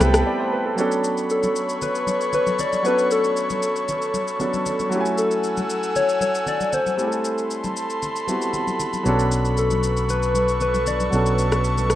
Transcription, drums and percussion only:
0.00 cross-stick, high conga, shaker
0.14 cross-stick, shaker
0.78 shaker
0.92 shaker
1.04 shaker
1.17 shaker
1.30 shaker
1.43 high conga, shaker
1.56 shaker
1.69 shaker
1.82 low conga, shaker
1.95 shaker
2.07 high conga, shaker
2.21 shaker
2.33 low conga, shaker
2.47 high conga, shaker
2.59 low conga, shaker
2.73 high conga, shaker
2.85 shaker
2.98 shaker
3.11 shaker
3.24 shaker
3.36 shaker
3.50 high conga, shaker
3.62 shaker
3.76 shaker
3.88 low conga, shaker
4.02 shaker
4.14 high conga, shaker
4.28 shaker
4.40 low conga, shaker
4.54 high conga, shaker
4.66 low conga, shaker
4.79 high conga, shaker
4.92 shaker
5.05 shaker
5.18 shaker
5.31 shaker
5.44 shaker
5.57 high conga, shaker
5.70 shaker
5.83 shaker
5.96 low conga, shaker
6.09 shaker
6.21 high conga, shaker
6.35 shaker
6.46 low conga, shaker
6.60 high conga, shaker
6.73 low conga, shaker
6.86 high conga, shaker
6.99 shaker
7.12 shaker
7.25 shaker
7.38 shaker
7.51 shaker
7.64 high conga, shaker
7.76 shaker
7.90 shaker
8.02 low conga, shaker
8.16 shaker
8.28 high conga, shaker
8.42 shaker
8.53 low conga, shaker
8.67 high conga, shaker
8.80 low conga, shaker
8.93 high conga, shaker
9.06 shaker
9.19 shaker
9.32 shaker
9.45 shaker
9.57 shaker
9.71 high conga, shaker
9.83 shaker
9.97 shaker
10.09 low conga, shaker
10.23 shaker
10.35 high conga, shaker
10.48 shaker
10.60 low conga, shaker
10.74 high conga, shaker
10.86 low conga, shaker
11.00 high conga, shaker
11.13 shaker
11.26 shaker
11.38 shaker
11.52 cross-stick, shaker
11.64 shaker
11.78 high conga, shaker
11.90 cross-stick, shaker

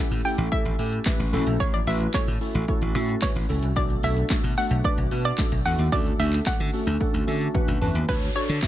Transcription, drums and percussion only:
0.12 closed hi-hat, shaker
0.25 open hi-hat, shaker
0.38 closed hi-hat, shaker
0.52 kick, shaker
0.65 closed hi-hat, shaker
0.79 open hi-hat, shaker
0.92 closed hi-hat, shaker
1.06 kick, snare, clap, shaker
1.19 closed hi-hat, shaker
1.33 open hi-hat, shaker
1.47 closed hi-hat, shaker
1.60 kick, shaker
1.74 closed hi-hat, shaker
1.87 open hi-hat, shaker
2.01 closed hi-hat, shaker
2.14 kick, snare, clap, shaker
2.28 closed hi-hat, shaker
2.41 open hi-hat, shaker
2.55 closed hi-hat, shaker
2.68 kick, shaker
2.82 closed hi-hat, shaker
2.95 open hi-hat, shaker
3.09 closed hi-hat, shaker
3.22 kick, snare, clap, shaker
3.35 closed hi-hat, shaker
3.49 open hi-hat, shaker
3.62 closed hi-hat, shaker
3.76 kick, shaker
3.90 closed hi-hat, shaker
4.03 open hi-hat, shaker
4.17 closed hi-hat, shaker
4.30 kick, snare, clap, shaker
4.44 closed hi-hat, shaker
4.57 open hi-hat, shaker
4.71 closed hi-hat, shaker
4.84 kick, shaker
4.98 closed hi-hat, shaker
5.11 open hi-hat, shaker
5.25 closed hi-hat, shaker
5.38 kick, snare, clap, shaker
5.52 closed hi-hat, shaker
5.65 open hi-hat, shaker
5.79 closed hi-hat, shaker
5.92 kick, shaker
6.06 closed hi-hat, shaker
6.19 open hi-hat, shaker
6.33 clap, closed hi-hat, shaker
6.46 kick, snare, clap, shaker
6.60 closed hi-hat, shaker
6.74 open hi-hat, shaker
6.87 closed hi-hat, shaker
7.00 kick, shaker
7.14 closed hi-hat, shaker
7.28 open hi-hat, shaker
7.41 closed hi-hat, shaker
7.55 kick, high tom, shaker
7.68 closed hi-hat, mid tom, shaker
7.82 mid tom, open hi-hat, shaker
7.95 closed hi-hat, floor tom, shaker
8.09 kick
8.62 kick, snare, clap

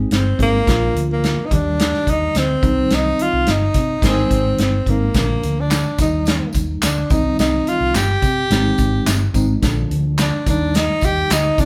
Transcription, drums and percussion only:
0.11 snare, closed hi-hat
0.39 kick, closed hi-hat
0.67 kick, snare, closed hi-hat
0.96 closed hi-hat
1.24 snare, closed hi-hat
1.51 kick, closed hi-hat
1.79 snare, closed hi-hat
1.94 snare
2.07 kick, closed hi-hat
2.35 snare, closed hi-hat
2.63 kick, closed hi-hat
2.90 snare, closed hi-hat
3.19 closed hi-hat
3.46 snare, closed hi-hat
3.74 kick, closed hi-hat
4.02 kick, snare, closed hi-hat
4.18 snare
4.31 kick, closed hi-hat
4.58 snare, closed hi-hat
4.86 kick, closed hi-hat
5.14 kick, snare, closed hi-hat, tambourine
5.43 closed hi-hat, tambourine
5.70 snare, clap, closed hi-hat, tambourine
5.98 kick, closed hi-hat, tambourine
6.25 snare, closed hi-hat, tambourine
6.53 kick, closed hi-hat, tambourine
6.82 snare, clap, closed hi-hat, tambourine
7.10 kick, closed hi-hat, tambourine
7.39 snare, closed hi-hat, tambourine
7.67 closed hi-hat, tambourine
7.95 snare, clap, closed hi-hat, tambourine
8.22 kick, closed hi-hat, tambourine
8.50 snare, closed hi-hat, tambourine
8.78 kick, closed hi-hat, tambourine
9.06 snare, clap, closed hi-hat, tambourine
9.34 kick, closed hi-hat, tambourine
9.62 kick, snare, closed hi-hat, tambourine
9.91 closed hi-hat
10.18 snare, clap, closed hi-hat, tambourine
10.46 kick, closed hi-hat, tambourine
10.74 snare, closed hi-hat, tambourine
11.01 kick, closed hi-hat, tambourine
11.30 snare, clap, closed hi-hat, tambourine
11.58 kick, closed hi-hat, tambourine

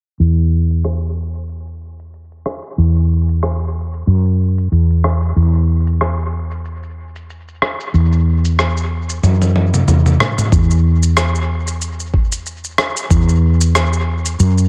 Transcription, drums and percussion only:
0.20 shaker
0.38 shaker
0.71 shaker
0.84 cross-stick, shaker
1.03 shaker
1.35 shaker
1.49 shaker
1.67 shaker
1.99 shaker
2.14 shaker
2.32 shaker
2.46 cross-stick
2.64 shaker
2.78 shaker
2.96 shaker
3.29 shaker
3.43 cross-stick, shaker
3.61 shaker
3.93 shaker
4.07 shaker
4.26 shaker
4.58 shaker
4.72 shaker
4.90 shaker
5.04 cross-stick
5.23 shaker
5.37 shaker
5.55 shaker
5.87 shaker
6.01 cross-stick, shaker
6.19 shaker
6.51 shaker
6.65 shaker
6.83 shaker
7.16 shaker
7.30 shaker
7.48 shaker
7.62 cross-stick
7.80 shaker
7.94 shaker
8.13 shaker
8.45 shaker
8.59 cross-stick, shaker
8.77 shaker
9.09 shaker
9.24 high tom, shaker
9.42 high tom, shaker
9.56 high tom
9.74 mid tom, shaker
9.88 mid tom, shaker
10.06 mid tom, shaker
10.20 cross-stick, mid tom
10.38 mid tom, shaker
10.52 kick, shaker
10.71 shaker
11.03 shaker
11.17 cross-stick, shaker
11.35 shaker
11.67 shaker
11.81 shaker
12.00 shaker
12.14 kick
12.32 shaker
12.46 shaker
12.64 shaker
12.78 cross-stick
12.97 shaker
13.10 kick, shaker
13.29 shaker
13.61 shaker
13.75 cross-stick, shaker
13.93 shaker
14.25 shaker
14.40 shaker
14.58 shaker

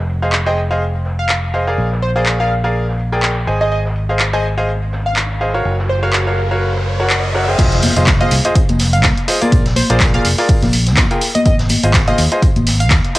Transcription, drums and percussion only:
0.09 closed hi-hat
0.22 closed hi-hat
0.32 clap
0.57 closed hi-hat
0.82 closed hi-hat
1.05 snare, closed hi-hat
1.19 closed hi-hat
1.29 clap
1.54 closed hi-hat
1.78 closed hi-hat
1.92 snare
2.02 closed hi-hat
2.26 clap
2.50 closed hi-hat
2.75 open hi-hat
2.89 snare
2.99 closed hi-hat
3.13 snare
3.23 snare, clap
3.47 closed hi-hat
3.72 closed hi-hat
3.85 snare
3.96 closed hi-hat
4.10 closed hi-hat
4.19 clap
4.44 closed hi-hat
4.68 closed hi-hat
4.92 snare, closed hi-hat
5.06 closed hi-hat
5.16 clap
5.41 closed hi-hat
5.55 closed hi-hat
5.65 closed hi-hat
5.79 snare
5.89 closed hi-hat
6.13 clap
6.38 closed hi-hat
6.62 open hi-hat
6.76 snare
6.86 closed hi-hat
6.99 snare
7.10 clap
7.35 snare, closed hi-hat
7.48 closed hi-hat
7.58 kick, closed hi-hat, crash, tambourine
7.72 snare, closed hi-hat
7.82 closed hi-hat, open hi-hat, tambourine, high conga
7.96 closed hi-hat, tambourine
8.06 kick, snare, clap, closed hi-hat, tambourine
8.20 closed hi-hat, tambourine, high conga
8.31 closed hi-hat, open hi-hat, tambourine
8.45 closed hi-hat, tambourine
8.55 kick, closed hi-hat, tambourine
8.69 closed hi-hat, tambourine, high conga
8.79 snare, closed hi-hat, open hi-hat, tambourine
8.93 closed hi-hat, tambourine
9.03 kick, snare, clap, closed hi-hat, tambourine, high conga
9.17 closed hi-hat
9.28 closed hi-hat, open hi-hat, tambourine
9.42 closed hi-hat, tambourine, high conga
9.52 kick, closed hi-hat, tambourine
9.66 snare, closed hi-hat
9.76 closed hi-hat, open hi-hat, tambourine, high conga
9.90 closed hi-hat, tambourine
10.00 kick, snare, clap, closed hi-hat, tambourine
10.14 closed hi-hat, tambourine, high conga
10.25 closed hi-hat, open hi-hat, tambourine
10.38 open hi-hat, tambourine
10.49 kick, closed hi-hat, open hi-hat, tambourine
10.62 snare, closed hi-hat, tambourine, high conga
10.73 closed hi-hat, open hi-hat, tambourine
10.87 snare, closed hi-hat, tambourine
10.97 kick, snare, clap, closed hi-hat, tambourine, high conga
11.11 closed hi-hat, tambourine
11.21 closed hi-hat, open hi-hat, tambourine
11.35 closed hi-hat, tambourine, high conga
11.45 kick, closed hi-hat, tambourine
11.59 snare, closed hi-hat
11.69 closed hi-hat, open hi-hat, tambourine, high conga
11.83 closed hi-hat, tambourine
11.94 kick, snare, clap, closed hi-hat, tambourine
12.08 closed hi-hat, tambourine, high conga
12.18 closed hi-hat, open hi-hat, tambourine
12.32 closed hi-hat, tambourine
12.42 kick, closed hi-hat, tambourine
12.56 closed hi-hat, tambourine, high conga
12.66 snare, closed hi-hat, open hi-hat, tambourine
12.80 closed hi-hat, tambourine
12.90 kick, snare, clap, closed hi-hat, tambourine, high conga
13.05 closed hi-hat
13.15 closed hi-hat, open hi-hat, tambourine

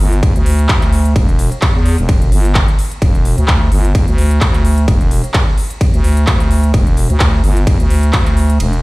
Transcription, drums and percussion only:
0.12 closed hi-hat
0.23 kick, ride
0.36 closed hi-hat
0.46 open hi-hat
0.59 closed hi-hat
0.69 kick, clap, ride
0.82 clap, closed hi-hat
0.93 open hi-hat
1.05 closed hi-hat
1.16 kick, ride
1.29 closed hi-hat
1.39 open hi-hat
1.52 closed hi-hat
1.62 kick, clap, ride
1.86 open hi-hat
1.98 closed hi-hat
2.09 kick, ride
2.22 closed hi-hat
2.32 open hi-hat
2.45 closed hi-hat
2.55 kick, clap, ride
2.68 closed hi-hat
2.79 open hi-hat
2.92 closed hi-hat
3.02 kick, ride
3.15 closed hi-hat
3.25 open hi-hat
3.38 closed hi-hat
3.48 kick, clap, ride
3.72 open hi-hat
3.85 closed hi-hat
3.95 kick, ride
4.08 closed hi-hat
4.18 open hi-hat
4.31 closed hi-hat
4.41 kick, clap, ride
4.54 clap, closed hi-hat
4.65 open hi-hat
4.78 closed hi-hat
4.88 kick, ride
5.01 closed hi-hat
5.11 open hi-hat
5.24 closed hi-hat
5.34 kick, clap, ride
5.58 open hi-hat
5.70 closed hi-hat
5.81 kick, ride
5.94 closed hi-hat
6.04 open hi-hat
6.17 closed hi-hat
6.27 kick, clap, ride
6.40 closed hi-hat
6.51 open hi-hat
6.63 closed hi-hat
6.74 kick, ride
6.87 closed hi-hat
6.97 open hi-hat
7.10 closed hi-hat
7.20 kick, clap, ride
7.44 open hi-hat
7.57 closed hi-hat
7.67 kick, ride
7.80 closed hi-hat
7.90 open hi-hat
8.03 closed hi-hat
8.13 kick, clap, ride
8.26 clap, closed hi-hat
8.37 open hi-hat
8.50 closed hi-hat
8.60 ride
8.73 closed hi-hat

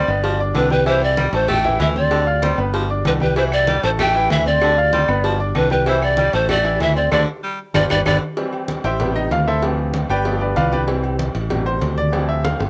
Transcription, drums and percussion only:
0.09 low agogo
0.24 cowbell, high conga
0.39 high conga
0.54 cowbell, high conga, low timbale, low agogo
0.70 high conga, low agogo
0.86 cowbell, low agogo
1.02 high conga, low agogo
1.17 cowbell, high conga, low timbale
1.33 cowbell, high conga, low agogo
1.48 cowbell, high conga, low conga, low agogo
1.64 high conga, low conga, low agogo
1.80 cowbell, high conga, low timbale
1.96 high conga
2.11 cowbell, high conga, low agogo
2.27 high conga
2.42 cowbell, high conga, low timbale, low agogo
2.58 low agogo
2.74 cowbell, high conga
2.90 high conga
3.05 cowbell, high conga, low timbale, low agogo
3.20 high conga, low agogo
3.36 cowbell, low agogo
3.52 high conga, low agogo, claves
3.67 cowbell, high conga, low timbale
3.83 cowbell, high conga, low agogo
3.99 cowbell, high conga, low conga, low agogo, claves
4.14 high conga, low agogo
4.30 cowbell, high conga, low timbale
4.46 high conga
4.61 cowbell, low agogo, claves
4.77 high conga
4.93 cowbell, high conga, low timbale, low agogo
5.08 low agogo, claves
5.24 cowbell, high conga
5.40 high conga
5.55 cowbell, high conga, low timbale, low agogo, claves
5.70 high conga, low agogo
5.86 cowbell, low agogo
6.02 high conga, low agogo, claves
6.17 cowbell, high conga, low timbale
6.33 cowbell, high conga, low agogo
6.49 cowbell, high conga, low conga, low agogo, claves
6.64 high conga, low agogo
6.80 cowbell, high conga, low timbale
7.12 cowbell, high conga, high timbale, claves
7.74 cowbell, high conga, high timbale, claves
7.90 cowbell, high conga, high timbale, claves
8.06 cowbell, high conga, high timbale, claves
8.37 cowbell, high conga, low agogo
8.53 high conga, low agogo
8.68 cowbell, high conga, low timbale
8.84 cowbell, high conga, low agogo
9.00 cowbell, high conga, low conga, low agogo
9.16 high conga, low agogo
9.31 cowbell, high conga, low timbale
9.62 cowbell, low agogo
9.78 high conga
9.94 cowbell, high conga, low timbale, low agogo
10.09 low agogo
10.25 cowbell, high conga
10.41 high conga
10.56 cowbell, high conga, low timbale, low agogo
10.72 high conga, low agogo
10.87 cowbell, high conga, low agogo
11.03 high conga, low agogo
11.19 cowbell, high conga, low timbale
11.35 cowbell, high conga, low agogo
11.50 cowbell, high conga, low conga, low agogo
11.66 high conga, low agogo
11.82 cowbell, high conga, low timbale
11.98 high conga
12.13 cowbell, high conga, low agogo
12.29 high conga
12.45 cowbell, high bongo, high conga, low timbale, low agogo
12.60 high bongo, low agogo

